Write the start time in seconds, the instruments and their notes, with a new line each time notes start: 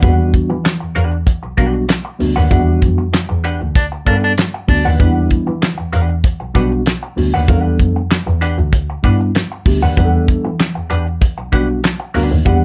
0.02 double bass E2, tine electric piano G3 B3 D4 F#4, hollow-body jazz guitar D4 G4 B4 F#5, kick, closed hi-hat
0.33 double bass E3, kick, closed hi-hat
0.50 double bass E3, muted hollow-body jazz guitar stroke
0.64 muted hollow-body jazz guitar stroke, snare, clap, closed hi-hat
0.80 double bass E2, muted hollow-body jazz guitar stroke
0.95 double bass E2, hollow-body jazz guitar D4 G4 B4 F#5, closed hi-hat
1.11 muted hollow-body jazz guitar stroke
1.26 muted hollow-body jazz guitar stroke, kick, closed hi-hat
1.43 double bass B1, muted hollow-body jazz guitar stroke
1.57 double bass B1, tine electric piano G3 B3 D4 F#4, hollow-body jazz guitar D4 G4 B4 F#5, kick, closed hi-hat
1.74 muted hollow-body jazz guitar stroke
1.88 muted hollow-body jazz guitar stroke, snare, clap, closed hi-hat
2.05 muted hollow-body jazz guitar stroke
2.19 double bass D2, tine electric piano G3 B3 D4 F#4, open hi-hat
2.36 double bass D#2, hollow-body jazz guitar D4 G4 B4 F#5
2.50 double bass E2, tine electric piano F#3 B3 D4 F#4, hollow-body jazz guitar D4 G4 B4 F#5, kick, closed hi-hat
2.56 tine electric piano G3
2.82 double bass F2, kick, closed hi-hat
2.98 muted hollow-body jazz guitar stroke
3.13 muted hollow-body jazz guitar stroke, snare, clap, closed hi-hat
3.29 double bass E2, muted hollow-body jazz guitar stroke
3.44 hollow-body jazz guitar D4 G4 B4 F#5, closed hi-hat
3.61 double bass D2, muted hollow-body jazz guitar stroke
3.75 baritone saxophone D4, muted hollow-body jazz guitar stroke, kick, closed hi-hat
3.92 muted hollow-body jazz guitar stroke
4.05 double bass G2, tine electric piano G3 B3 D4 A4, hollow-body jazz guitar D4 G4 B4 F#5, baritone saxophone D4, kick, closed hi-hat
4.23 baritone saxophone D4, muted hollow-body jazz guitar stroke
4.38 muted hollow-body jazz guitar stroke, snare, clap, closed hi-hat
4.54 muted hollow-body jazz guitar stroke
4.67 double bass D2, tine electric piano G3 B3 D4 F#4, baritone saxophone D4, kick, open hi-hat
4.85 double bass D#2, hollow-body jazz guitar D4 G4 B4 F#5
4.99 double bass E2, tine electric piano G3 B3 D4 E4, hollow-body jazz guitar D4 G4 B4 F#5, kick, closed hi-hat
5.31 double bass E3, kick, closed hi-hat
5.47 double bass E3, muted hollow-body jazz guitar stroke
5.62 muted hollow-body jazz guitar stroke, snare, clap, closed hi-hat
5.78 double bass E2, muted hollow-body jazz guitar stroke
5.92 double bass E2, hollow-body jazz guitar D4 G4 B4 F#5, closed hi-hat
6.09 muted hollow-body jazz guitar stroke
6.24 muted hollow-body jazz guitar stroke, kick, closed hi-hat
6.40 double bass B1, muted hollow-body jazz guitar stroke
6.54 double bass B1, tine electric piano G3 B3 D4 F#4, hollow-body jazz guitar D4 G4 B4 F#5, kick, closed hi-hat
6.72 muted hollow-body jazz guitar stroke
6.86 muted hollow-body jazz guitar stroke, snare, clap, closed hi-hat
7.03 muted hollow-body jazz guitar stroke
7.16 double bass D2, tine electric piano G3 B3 D4 F#4, open hi-hat
7.34 double bass D#2, hollow-body jazz guitar D4 G4 B4 F#5
7.48 double bass E2, tine electric piano G3 B3 D4 A4, hollow-body jazz guitar C#4 F#4 A#4 F5, kick, closed hi-hat
7.60 hollow-body jazz guitar D4 G4 B4 F#5
7.79 double bass F2, kick, closed hi-hat
7.96 muted hollow-body jazz guitar stroke
8.11 muted hollow-body jazz guitar stroke, snare, clap, closed hi-hat
8.27 double bass E2, muted hollow-body jazz guitar stroke
8.41 hollow-body jazz guitar D4 G4 B4 F#5, closed hi-hat
8.58 double bass D2, muted hollow-body jazz guitar stroke
8.73 muted hollow-body jazz guitar stroke, kick, closed hi-hat
8.90 muted hollow-body jazz guitar stroke
9.03 double bass G2, tine electric piano G3 B3 D4 E4, hollow-body jazz guitar D4 G4 B4 F#5, kick, closed hi-hat
9.21 muted hollow-body jazz guitar stroke
9.35 muted hollow-body jazz guitar stroke, snare, clap, closed hi-hat
9.52 muted hollow-body jazz guitar stroke
9.65 double bass D2, tine electric piano G3 B3 D4 G4, kick, open hi-hat
9.82 double bass D#2, hollow-body jazz guitar D4 G4 B4 F#5
9.96 double bass E2, tine electric piano G3 B3 D4 G#4, hollow-body jazz guitar D4 G4 B4 F#5, kick, closed hi-hat
10.05 tine electric piano A4
10.28 double bass E3, kick, closed hi-hat
10.45 double bass E3, muted hollow-body jazz guitar stroke
10.59 muted hollow-body jazz guitar stroke, snare, clap, closed hi-hat
10.75 double bass E2, muted hollow-body jazz guitar stroke
10.90 double bass E2, hollow-body jazz guitar D4 G4 B4 F#5, closed hi-hat
11.06 muted hollow-body jazz guitar stroke
11.21 muted hollow-body jazz guitar stroke, kick, closed hi-hat
11.38 double bass B1, muted hollow-body jazz guitar stroke
11.52 double bass B1, tine electric piano G3 B3 D4 F#4, hollow-body jazz guitar D4 G4 B4 F#5, kick, closed hi-hat
11.69 muted hollow-body jazz guitar stroke
11.83 muted hollow-body jazz guitar stroke, snare, clap, closed hi-hat
12.00 muted hollow-body jazz guitar stroke
12.14 double bass D2, tine electric piano G3 B3 D4 F#4, hollow-body jazz guitar D4 G4 B4 F#5, open hi-hat
12.31 double bass D#2, muted hollow-body jazz guitar stroke
12.45 double bass E2, tine electric piano G3 B3 D4 G4, hollow-body jazz guitar D4 G4 B4 F#5, kick, closed hi-hat